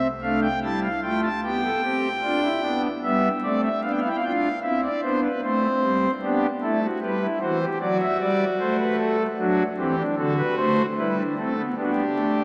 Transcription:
0.23 A3 D4 F5
0.42 G5
0.63 G3 E4 A5
0.83 F5
1.03 A3 F4 G5
1.23 A5
1.44 B3 G4 G5
1.64 A4
1.84 C4 G4
2.23 D4 F4
2.43 E4
2.62 B3 D4
3.03 G3 B3 E5
3.43 A3 C4 D5
3.63 E5
3.82 B3 D4 F5
3.91 G5
4.00 E4 F5
4.08 G5
4.16 F5
4.24 D4 F4 G5
4.31 F5
4.63 C4 E4 E5
4.83 D5
5.03 B3 D4 C5
5.23 B4
5.43 A3 C4 C5
5.82 G3
6.22 B3 D4 G4
6.62 A3 E4 A4
6.82 F#4
7.02 G3 G4 B4
7.22 E4
7.41 E3 F#4 C5
7.62 G4
7.81 F#3 F#4 D5
8.01 E5
8.20 G3 D5
8.60 A3 C5
8.79 B4
8.98 A4
9.38 F#3 D4 F#4
9.78 E3 C4 G4
9.98 D4
10.17 D3 F#4 A4
10.38 B4
10.58 A3 C5
10.97 G3 E4 B4
11.17 D4
11.37 A3 C4 A4
11.57 B3
11.77 B3 D4 G4
11.83 F#4
11.90 G4
12.15 A3

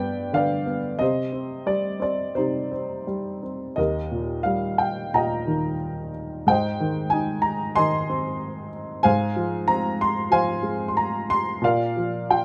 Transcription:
Already playing: G2 B4 D5 G5
0.00 B3
0.33 D3 B4 D5 F5
0.66 B3
0.98 C3 G4 C5 D#5
1.32 C4
1.66 G3 D5
2.00 C4 D5
2.35 C3 D#4 G4 C5
2.71 C4
3.07 G3
3.43 C4
3.76 D#2 G4 A#4 D#5
4.11 A#2
4.43 G3 F5
4.78 G5
5.14 A#2 D#5 G5 A#5
5.47 D#3
6.47 G#2 C5 D#5 G5
6.80 D#3
7.10 D#4 G#5
7.42 A#5
7.75 D#3 D#5 G#5 C6
8.10 C4
9.03 G#2 C5 F5 G#5
9.36 F3
9.68 C4 A#5
10.01 C6
10.31 F3 C5 F5 G#5
10.63 G#3
10.88 C6
10.97 A#5
11.30 C6
11.62 A#2 A#4 D5 F5
11.96 F3
12.30 F4 G5

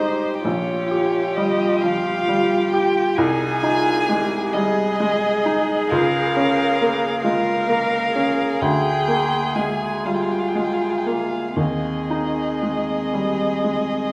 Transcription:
Already playing: G3 G#3 D#4 C5 D#5
0.00 G4
0.43 A#1 F4 G4 C#5
0.91 G4
1.36 G3 D#5
1.81 F3 F5
2.28 G3
2.72 G4 G5
3.16 C2 D#4 G#4 G#5
3.62 D#4 F4
4.08 G#3 G4
4.52 G3 G#4 D#5
5.00 G#3
5.45 D#4
5.89 C#2 A#4 F5
6.36 C#4
6.81 A#3
7.23 G#3 F4 A#4 F5
7.68 A#3 A#4
8.15 C#4 G#4
8.60 D2 G#4 G5
9.08 A#3
9.56 G#3 G#5
10.05 G3 F4 G#4 F5
10.14 G5
10.22 F5
10.31 G5
10.39 F5
10.48 G5
10.55 G#3 F5
10.64 G5
10.73 F5
10.81 G5
10.90 F5
10.98 G5
11.06 A#3 F5
11.56 D#2 C4 G#4 D#5
12.10 D#4
12.63 G#3
13.14 G3
13.64 G#3

